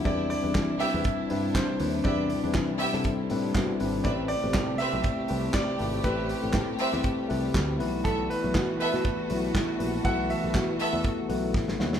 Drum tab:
HH |x-o-x-o-x-o-x-o-|x-o-x-o-x-o-x-o-|x-o-x-o-x-o---o-|x-o-x-o-x-o-x-o-|
CP |----x-------x---|----x-------x---|----x-------x---|----x-------x---|
SD |----o-------o---|----o--o----o---|----o-------o---|----o--o----o---|
BD |o---o---o---o---|o---o---o---o---|o---o---o---o---|o---o---o---o---|

HH |x-o-x-o-x-o-x-o-|x-o-x-o-x-o-----|
CP |----x-------x---|----x-----------|
SD |----o--o----o---|----o-------oooo|
BD |o---o---o---o---|o---o---o---o---|